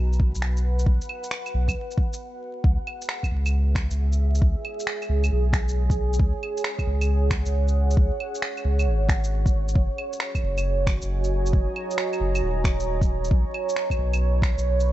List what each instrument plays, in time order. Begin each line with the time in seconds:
Already playing: sub bass B1, ambient pad F#4 B4 F#5 G#5 A#5
0.13 shaker
0.20 kick
0.35 sub bass B1, shaker
0.42 finger snap
0.57 shaker
0.79 shaker
0.86 sub bass B1, kick
1.01 shaker
1.09 claves
1.24 shaker
1.31 finger snap
1.46 claves, shaker
1.54 sub bass B1
1.68 kick, claves, shaker
1.91 shaker
1.98 kick
2.13 shaker
2.64 sub bass C#2, ambient pad G#4, kick
2.87 ambient pad E5, claves
3.02 shaker
3.09 finger snap
3.23 kick, claves, shaker
3.31 sub bass C#2
3.46 ambient pad C#5, claves, shaker
3.75 finger snap, kick, shaker
3.91 sub bass C#2, shaker
4.13 shaker
4.35 shaker
4.42 sub bass C#2, kick
4.65 claves
4.80 shaker
4.87 finger snap
5.02 claves, shaker
5.09 sub bass C#2
5.24 claves, shaker
5.32 sub bass B1
5.53 finger snap, kick, shaker
5.68 shaker
5.90 kick, shaker
5.97 ambient pad F#5
6.13 shaker
6.19 sub bass C#2, kick
6.43 claves
6.57 shaker
6.64 finger snap
6.79 kick, claves, shaker
6.87 sub bass C#2
7.01 claves, shaker
7.30 finger snap, kick, shaker
7.46 sub bass C#2, shaker
7.68 shaker
7.91 shaker
7.97 sub bass C#2, kick
8.20 claves
8.35 shaker
8.42 finger snap
8.57 claves, shaker
8.65 sub bass C#2
8.79 claves, shaker
8.86 sub bass G#1
9.09 finger snap, kick, shaker
9.24 shaker
9.46 kick, shaker
9.53 sub bass G#1
9.69 shaker
9.75 sub bass F#1, ambient pad F#4, kick
9.98 claves
10.13 shaker
10.20 finger snap
10.27 ambient pad D#5
10.35 ambient pad G#5, kick, claves, shaker
10.43 sub bass F#1
10.58 claves, shaker
10.83 ambient pad A#5, kick
10.87 finger snap, shaker
11.02 sub bass F#1, shaker
11.24 shaker
11.46 shaker
11.53 sub bass F#1, kick
11.76 claves
11.91 shaker
11.98 finger snap
12.13 claves, shaker
12.20 sub bass F#1
12.35 claves, shaker
12.42 sub bass D#1
12.64 finger snap, kick, shaker
12.80 shaker
13.01 kick, shaker
13.24 shaker
13.30 sub bass B1, ambient pad B4, kick
13.54 claves
13.69 shaker
13.76 finger snap
13.90 kick, claves, shaker
13.98 sub bass B1
14.13 claves, shaker
14.42 finger snap, kick, shaker
14.58 sub bass B1, shaker
14.80 shaker